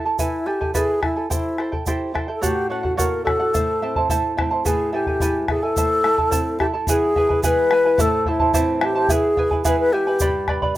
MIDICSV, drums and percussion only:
0, 0, Header, 1, 3, 480
1, 0, Start_track
1, 0, Tempo, 556070
1, 168, Time_signature, 2, 2, 24, 8
1, 9299, End_track
2, 0, Start_track
2, 0, Title_t, "Bombo"
2, 162, Note_on_c, 9, 43, 64
2, 248, Note_off_c, 9, 43, 0
2, 531, Note_on_c, 9, 43, 53
2, 617, Note_off_c, 9, 43, 0
2, 644, Note_on_c, 9, 43, 65
2, 731, Note_off_c, 9, 43, 0
2, 886, Note_on_c, 9, 37, 58
2, 886, Note_on_c, 9, 43, 57
2, 972, Note_off_c, 9, 37, 0
2, 972, Note_off_c, 9, 43, 0
2, 1129, Note_on_c, 9, 43, 77
2, 1216, Note_off_c, 9, 43, 0
2, 1367, Note_on_c, 9, 37, 45
2, 1453, Note_off_c, 9, 37, 0
2, 1492, Note_on_c, 9, 43, 53
2, 1578, Note_off_c, 9, 43, 0
2, 1610, Note_on_c, 9, 43, 58
2, 1696, Note_off_c, 9, 43, 0
2, 1860, Note_on_c, 9, 37, 51
2, 1860, Note_on_c, 9, 43, 49
2, 1946, Note_off_c, 9, 37, 0
2, 1946, Note_off_c, 9, 43, 0
2, 2100, Note_on_c, 9, 43, 58
2, 2186, Note_off_c, 9, 43, 0
2, 2456, Note_on_c, 9, 43, 55
2, 2543, Note_off_c, 9, 43, 0
2, 2581, Note_on_c, 9, 43, 71
2, 2668, Note_off_c, 9, 43, 0
2, 2823, Note_on_c, 9, 37, 59
2, 2823, Note_on_c, 9, 43, 59
2, 2909, Note_off_c, 9, 37, 0
2, 2909, Note_off_c, 9, 43, 0
2, 3063, Note_on_c, 9, 43, 72
2, 3150, Note_off_c, 9, 43, 0
2, 3416, Note_on_c, 9, 43, 57
2, 3502, Note_off_c, 9, 43, 0
2, 3534, Note_on_c, 9, 43, 68
2, 3620, Note_off_c, 9, 43, 0
2, 3785, Note_on_c, 9, 37, 60
2, 3785, Note_on_c, 9, 43, 64
2, 3872, Note_off_c, 9, 37, 0
2, 3872, Note_off_c, 9, 43, 0
2, 4019, Note_on_c, 9, 43, 78
2, 4105, Note_off_c, 9, 43, 0
2, 4372, Note_on_c, 9, 43, 53
2, 4459, Note_off_c, 9, 43, 0
2, 4489, Note_on_c, 9, 43, 74
2, 4576, Note_off_c, 9, 43, 0
2, 4734, Note_on_c, 9, 37, 59
2, 4734, Note_on_c, 9, 43, 61
2, 4820, Note_off_c, 9, 37, 0
2, 4820, Note_off_c, 9, 43, 0
2, 4977, Note_on_c, 9, 43, 76
2, 5063, Note_off_c, 9, 43, 0
2, 5215, Note_on_c, 9, 37, 49
2, 5301, Note_off_c, 9, 37, 0
2, 5337, Note_on_c, 9, 43, 50
2, 5423, Note_off_c, 9, 43, 0
2, 5455, Note_on_c, 9, 43, 69
2, 5542, Note_off_c, 9, 43, 0
2, 5698, Note_on_c, 9, 37, 53
2, 5698, Note_on_c, 9, 43, 56
2, 5784, Note_off_c, 9, 37, 0
2, 5784, Note_off_c, 9, 43, 0
2, 5930, Note_on_c, 9, 43, 74
2, 6016, Note_off_c, 9, 43, 0
2, 6179, Note_on_c, 9, 43, 53
2, 6266, Note_off_c, 9, 43, 0
2, 6304, Note_on_c, 9, 43, 57
2, 6390, Note_off_c, 9, 43, 0
2, 6418, Note_on_c, 9, 43, 73
2, 6504, Note_off_c, 9, 43, 0
2, 6653, Note_on_c, 9, 37, 60
2, 6739, Note_off_c, 9, 37, 0
2, 6890, Note_on_c, 9, 43, 83
2, 6977, Note_off_c, 9, 43, 0
2, 7125, Note_on_c, 9, 43, 54
2, 7211, Note_off_c, 9, 43, 0
2, 7247, Note_on_c, 9, 43, 61
2, 7333, Note_off_c, 9, 43, 0
2, 7370, Note_on_c, 9, 43, 78
2, 7456, Note_off_c, 9, 43, 0
2, 7608, Note_on_c, 9, 37, 64
2, 7694, Note_off_c, 9, 37, 0
2, 7843, Note_on_c, 9, 43, 79
2, 7929, Note_off_c, 9, 43, 0
2, 8088, Note_on_c, 9, 43, 53
2, 8174, Note_off_c, 9, 43, 0
2, 8210, Note_on_c, 9, 43, 60
2, 8296, Note_off_c, 9, 43, 0
2, 8330, Note_on_c, 9, 43, 69
2, 8416, Note_off_c, 9, 43, 0
2, 8808, Note_on_c, 9, 43, 74
2, 8894, Note_off_c, 9, 43, 0
2, 9044, Note_on_c, 9, 37, 51
2, 9044, Note_on_c, 9, 43, 53
2, 9131, Note_off_c, 9, 37, 0
2, 9131, Note_off_c, 9, 43, 0
2, 9170, Note_on_c, 9, 43, 59
2, 9256, Note_off_c, 9, 43, 0
2, 9299, End_track
3, 0, Start_track
3, 0, Title_t, "Drums"
3, 164, Note_on_c, 9, 82, 83
3, 251, Note_off_c, 9, 82, 0
3, 646, Note_on_c, 9, 82, 86
3, 732, Note_off_c, 9, 82, 0
3, 1133, Note_on_c, 9, 82, 92
3, 1219, Note_off_c, 9, 82, 0
3, 1609, Note_on_c, 9, 82, 90
3, 1696, Note_off_c, 9, 82, 0
3, 2098, Note_on_c, 9, 82, 93
3, 2184, Note_off_c, 9, 82, 0
3, 2582, Note_on_c, 9, 82, 100
3, 2668, Note_off_c, 9, 82, 0
3, 3059, Note_on_c, 9, 82, 84
3, 3145, Note_off_c, 9, 82, 0
3, 3544, Note_on_c, 9, 82, 88
3, 3631, Note_off_c, 9, 82, 0
3, 4019, Note_on_c, 9, 82, 90
3, 4106, Note_off_c, 9, 82, 0
3, 4504, Note_on_c, 9, 82, 91
3, 4590, Note_off_c, 9, 82, 0
3, 4981, Note_on_c, 9, 82, 93
3, 5067, Note_off_c, 9, 82, 0
3, 5458, Note_on_c, 9, 82, 99
3, 5544, Note_off_c, 9, 82, 0
3, 5941, Note_on_c, 9, 82, 114
3, 6027, Note_off_c, 9, 82, 0
3, 6418, Note_on_c, 9, 82, 105
3, 6504, Note_off_c, 9, 82, 0
3, 6901, Note_on_c, 9, 82, 87
3, 6987, Note_off_c, 9, 82, 0
3, 7376, Note_on_c, 9, 82, 97
3, 7462, Note_off_c, 9, 82, 0
3, 7854, Note_on_c, 9, 82, 87
3, 7940, Note_off_c, 9, 82, 0
3, 8328, Note_on_c, 9, 82, 94
3, 8414, Note_off_c, 9, 82, 0
3, 8801, Note_on_c, 9, 82, 101
3, 8888, Note_off_c, 9, 82, 0
3, 9299, End_track
0, 0, End_of_file